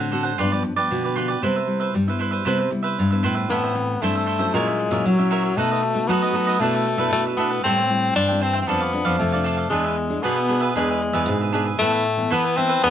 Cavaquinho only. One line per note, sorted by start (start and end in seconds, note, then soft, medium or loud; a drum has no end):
0.00 0.11 A4 soft
0.00 0.11 C5 soft
0.00 0.12 F#5 soft
0.11 0.24 D4 soft
0.11 0.24 A4 soft
0.11 0.23 C5 soft
0.11 0.22 F#5 medium
0.23 0.38 A4 medium
0.23 0.37 C5 medium
0.23 0.37 F#5 medium
0.38 0.51 F4 medium
0.38 0.51 G4 medium
0.38 0.51 B4 medium
0.38 0.51 D5 medium
0.52 0.63 G4 soft
0.52 0.63 B4 soft
0.52 0.63 D5 medium
0.64 muted cavaquinho stroke soft
0.76 1.03 G4 medium
0.76 1.03 B4 medium
0.76 1.02 D5 medium
1.04 1.15 G4 soft
1.04 1.16 B4 soft
1.04 1.16 D5 soft
1.15 1.28 F4 medium
1.15 1.29 G4 medium
1.15 1.28 B4 medium
1.15 1.27 D5 medium
1.28 1.42 G4 soft
1.28 1.42 B4 soft
1.28 1.41 D5 soft
1.42 1.55 E4 medium
1.42 1.55 B4 medium
1.42 1.55 C5 medium
1.42 1.55 E5 medium
1.56 1.79 B4 soft
1.56 1.81 C5 soft
1.56 1.79 E5 medium
1.80 1.93 B4 medium
1.80 1.94 C5 medium
1.80 1.93 E5 medium
1.94 muted cavaquinho stroke soft
2.08 2.20 B4 soft
2.08 2.19 C5 soft
2.08 2.20 E5 soft
2.19 2.32 E4 soft
2.19 2.31 B4 medium
2.19 2.32 C5 medium
2.19 2.30 E5 soft
2.31 2.45 B4 medium
2.31 2.45 C5 medium
2.31 2.44 E5 medium
2.45 2.58 E4 medium
2.45 2.59 B4 medium
2.45 2.58 C5 medium
2.45 2.57 E5 medium
2.58 2.70 B4 soft
2.58 2.70 C5 soft
2.58 2.70 E5 soft
2.70 muted cavaquinho stroke soft
2.83 3.10 B4 medium
2.83 3.10 C5 medium
2.83 3.09 E5 medium
3.11 3.23 B4 soft
3.11 3.22 C5 soft
3.11 3.23 E5 soft
3.23 3.36 E4 medium
3.23 3.35 B4 medium
3.23 3.36 C5 medium
3.23 3.34 E5 medium
3.35 3.49 B4 soft
3.35 3.49 C5 soft
3.35 3.48 E5 soft
3.50 3.62 E4 medium
3.50 3.62 A4 medium
3.50 3.63 C5 medium
3.50 3.62 E5 medium
3.64 3.75 A4 soft
3.64 3.75 C5 soft
3.64 3.75 E5 soft
3.75 muted cavaquinho stroke soft
4.02 4.14 E4 medium
4.02 4.15 A4 medium
4.02 4.15 C5 medium
4.02 4.14 E5 medium
4.15 4.26 A4 soft
4.15 4.26 C5 soft
4.15 4.27 E5 soft
4.26 4.39 E4 medium
4.26 4.39 A4 medium
4.26 4.39 C5 medium
4.26 4.38 E5 medium
4.39 4.53 A4 medium
4.39 4.53 C5 medium
4.39 4.52 E5 medium
4.54 4.66 F#4 medium
4.54 4.66 A#4 medium
4.54 4.67 C#5 medium
4.54 4.66 E5 medium
4.67 4.79 A#4 soft
4.67 4.79 C#5 soft
4.67 4.79 E5 medium
4.79 muted cavaquinho stroke soft
4.91 5.18 A#4 medium
4.91 5.18 C#5 medium
4.91 5.17 E5 medium
5.19 5.30 A#4 soft
5.19 5.31 C#5 soft
5.19 5.31 E5 soft
5.31 5.43 F#4 medium
5.31 5.43 A#4 medium
5.31 5.42 C#5 medium
5.31 5.41 E5 medium
5.43 5.57 A#4 soft
5.43 5.56 C#5 soft
5.43 5.56 E5 soft
5.57 5.69 D#4 medium
5.57 5.70 A4 medium
5.57 5.70 B4 medium
5.57 5.70 D#5 medium
5.71 5.81 A4 soft
5.71 5.81 B4 soft
5.71 5.82 D#5 soft
5.82 muted cavaquinho stroke soft
6.09 6.21 D#4 medium
6.09 6.22 A4 medium
6.09 6.22 B4 medium
6.09 6.21 D#5 medium
6.22 6.34 A4 soft
6.22 6.35 B4 soft
6.22 6.34 D#5 medium
6.35 6.47 D#4 medium
6.35 6.47 A4 medium
6.35 6.47 B4 soft
6.35 6.46 D#5 medium
6.47 6.61 A4 medium
6.47 6.60 B4 medium
6.47 6.60 D#5 medium
6.61 6.73 D4 medium
6.61 6.74 A4 medium
6.61 6.74 B4 medium
6.61 6.73 E5 medium
6.75 6.86 A4 soft
6.75 6.86 B4 soft
6.75 6.87 E5 soft
6.87 muted cavaquinho stroke soft
6.98 7.25 A4 medium
6.98 7.25 B4 medium
6.98 7.24 E5 medium
7.27 7.38 A4 soft
7.27 7.38 B4 soft
7.27 7.38 E5 medium
7.38 7.51 D4 medium
7.38 7.50 A4 medium
7.38 7.49 B4 medium
7.38 7.48 E5 medium
7.49 7.63 A4 soft
7.49 7.63 B4 soft
7.49 7.63 E5 medium
7.64 7.77 A4 medium
7.64 7.77 C5 medium
7.64 7.77 E5 medium
7.64 7.76 G5 medium
7.77 7.89 C5 soft
7.77 7.89 E5 soft
7.77 7.89 G5 soft
7.89 muted cavaquinho stroke soft
8.15 8.28 A4 medium
8.15 8.28 C5 medium
8.15 8.28 E5 medium
8.15 8.27 G5 medium
8.28 8.40 C5 soft
8.28 8.40 E5 soft
8.28 8.41 G5 medium
8.41 8.54 A4 soft
8.41 8.54 C5 medium
8.41 8.53 E5 medium
8.41 8.52 G5 medium
8.53 8.68 C5 medium
8.53 8.67 E5 medium
8.53 8.67 G5 medium
8.67 8.80 D4 medium
8.67 8.81 A4 medium
8.67 8.80 D5 medium
8.67 8.79 F5 medium
8.80 8.92 A4 soft
8.80 8.92 D5 soft
8.80 8.93 F5 soft
8.93 muted cavaquinho stroke soft
9.05 9.32 A4 medium
9.05 9.32 D5 medium
9.05 9.31 F5 medium
9.32 9.44 A4 soft
9.32 9.45 D5 soft
9.32 9.45 F5 soft
9.44 9.58 D4 medium
9.44 9.57 A4 medium
9.44 9.57 D5 medium
9.44 9.56 F5 medium
9.57 9.71 A4 soft
9.57 9.71 D5 soft
9.57 9.70 F5 soft
9.71 9.84 D4 medium
9.71 9.84 G#4 medium
9.71 9.84 B4 medium
9.71 9.83 E5 medium
9.84 9.96 G#4 soft
9.84 9.96 B4 soft
9.84 9.97 E5 medium
9.97 muted cavaquinho stroke soft
10.23 10.36 D4 medium
10.23 10.36 G#4 medium
10.23 10.36 B4 medium
10.23 10.35 E5 medium
10.37 10.48 G#4 soft
10.37 10.48 B4 soft
10.37 10.49 E5 soft
10.48 10.62 D4 soft
10.48 10.62 G#4 soft
10.48 10.61 B4 soft
10.48 10.60 E5 medium
10.61 10.75 G#4 medium
10.61 10.75 B4 medium
10.61 10.74 E5 medium
10.76 10.88 D4 medium
10.76 10.88 G#4 medium
10.76 10.89 B4 medium
10.76 10.89 E5 medium
10.90 11.01 G#4 soft
10.90 11.01 B4 soft
10.90 11.01 E5 soft
11.02 muted cavaquinho stroke soft
11.13 11.40 G#4 medium
11.13 11.40 B4 medium
11.13 11.39 E5 medium
11.41 11.52 G#4 soft
11.41 11.53 B4 soft
11.41 11.53 E5 soft
11.53 11.66 D4 medium
11.53 11.66 G#4 medium
11.53 11.65 B4 medium
11.53 11.64 E5 medium
11.65 11.79 G#4 soft
11.65 11.79 B4 soft
11.65 11.78 E5 medium
11.79 11.92 E4 medium
11.79 11.92 A4 medium
11.79 11.93 B4 medium
11.79 11.91 E5 medium
11.92 12.03 A4 soft
11.92 12.04 B4 soft
11.92 12.04 E5 medium
12.04 muted cavaquinho stroke soft
12.30 12.43 E4 medium
12.30 12.44 A4 medium
12.30 12.44 B4 medium
12.30 12.43 E5 medium
12.44 12.55 A4 soft
12.44 12.56 B4 soft
12.44 12.56 E5 medium
12.55 12.69 E4 soft
12.55 12.68 A4 medium
12.55 12.68 B4 medium
12.55 12.67 E5 medium
12.68 12.82 A4 medium
12.68 12.82 B4 medium
12.68 12.82 E5 medium
12.82 12.90 D4 medium
12.82 12.90 G#4 medium
12.82 12.90 B4 medium
12.82 12.90 E5 medium